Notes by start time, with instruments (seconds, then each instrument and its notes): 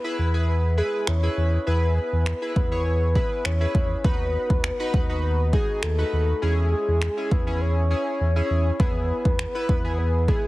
Already playing: soft synth lead B4
0.04 synth keys E4 G#4 B4
0.18 sub bass E2
0.34 synth keys E4 G#4 B4
0.48 soft synth lead B4
0.77 synth keys E4 G#4 B4, soft synth lead G#4
1.07 sub bass E2, soft synth lead C#5, finger snap
1.23 synth keys E4 G#4 B4
1.37 sub bass E2
1.67 sub bass E2, synth keys E4 G#4 B4, soft synth lead B4
1.97 soft synth lead B4
2.12 sub bass E2
2.26 finger snap
2.42 synth keys E4 G#4 B4
2.56 sub bass E2, soft synth lead B4, kick
2.71 synth keys E4 G#4 C#5
2.86 soft synth lead B4
3.15 synth keys E4 G#4 B4, kick
3.45 sub bass E2, soft synth lead C#5, finger snap
3.61 synth keys E4 G#4 B4
3.75 sub bass E2, kick
4.04 sub bass D#2, synth keys D#4 F#4 B4, soft synth lead B4, kick
4.50 sub bass D#2, kick
4.64 finger snap
4.80 synth keys D#4 F#4 B4
4.94 sub bass D#2, kick
5.09 synth keys D#4 F#4 B4
5.23 soft synth lead B4
5.53 synth keys D#4 F#4 G#4, soft synth lead G#4, kick
5.83 sub bass D#2, soft synth lead A4, finger snap
5.98 synth keys D#4 F#4 B4
6.13 sub bass D#2
6.42 sub bass E2, synth keys C#4 E4 G#4, soft synth lead G#4
6.72 soft synth lead G#4
6.88 sub bass E2
7.02 finger snap
7.17 synth keys C#4 E4 G#4
7.31 sub bass E2, soft synth lead B4, kick
7.47 synth keys C#4 E4 G#4
7.61 soft synth lead C#5
7.90 synth keys C#4 E4 G#4
8.20 sub bass E2, soft synth lead C#5
8.36 synth keys C#4 E4 G#4
8.50 sub bass E2
8.80 sub bass E2, synth keys B3 E4 G#4, soft synth lead B4, kick
9.25 sub bass E2, kick
9.39 finger snap
9.55 synth keys B3 E4 B4
9.69 sub bass E2, kick
9.84 synth keys B3 E4 G#4
9.98 soft synth lead B4
10.28 synth keys B3 E4 G#4, soft synth lead G#4, kick